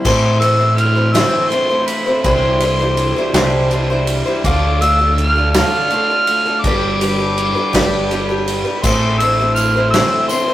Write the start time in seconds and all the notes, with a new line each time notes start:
0.04 A2 E3 A3 C4 E4 C5 C6, kick, crash
0.39 E3 A3 C4 E4 E6, ride
0.43 C5
0.59 A3 C4 E4 C5
0.75 E3 F6, ride
0.95 A3 C4 E4 C5
1.13 A2 E3 A3 C4 E4 C5 E6, snare, ride
1.49 E3 A3 C4 C6, ride
1.53 E4 C5
1.70 A3 C4 E4 C5
1.86 A3 B5, ride
2.06 A3 C4 E4 C5
2.23 C2 C3 E3 G3 D4 E4 C5 C6, kick, ride
2.60 E3 G3 D4 E4, ride
2.65 C5
2.79 G3 D4 E4 C5
2.97 E3, ride
3.16 G3 D4 E4 C5
3.33 C2 C3 E3 G3 D4 E4 C5, snare, ride
3.71 E3 G3 D4 E4 C5, ride
3.90 G3 D4 E4 C5
4.07 G3, ride
4.26 G3 D4 E4 C5
4.44 D2 D3 A3 D4 F4 A4 D6, kick, ride
4.81 A3 D4 F4 A4 E6, ride
4.99 D4 F4 A4
5.16 D3 F6, ride
5.36 D4 F4 A4
5.51 D3 D4 F6, snare, ride
5.55 A3 D4 F4 A4
5.90 D3 A3 D4 F4, ride
5.94 A4
6.10 D4 F4 A4
6.27 A3, ride
6.46 D4 F4 A4
6.61 G1 G2 D6, kick, ride
6.65 G3 D4 G4 B4
7.01 D3 G3 D4 G4 B4, ride
7.18 D4 G4 B4
7.38 G3, ride
7.55 D4 G4 B4
7.73 G1 G3 D4 G4 B4, kick, snare, ride
8.11 G3 D4 G4 B4, ride
8.29 D4 G4 B4
8.48 B3, ride
8.64 D4 G4 B4
8.76 B5
8.83 A1 A2 E3 A3 C4 E4 C5 C6, kick, crash, tambourine
9.18 E3 A3 C4 E4 E6, ride, tambourine
9.24 C5
9.39 A3 C4 E4 C5
9.54 E3 F6, ride, tambourine
9.75 A3 C4 E4 C5
9.90 A2 E6, snare, ride
9.95 E3 A3 C4 E4 C5
10.28 E3 A3 C4 C6, ride, tambourine
10.32 E4 C5
10.48 A3 C4 E4 C5, tambourine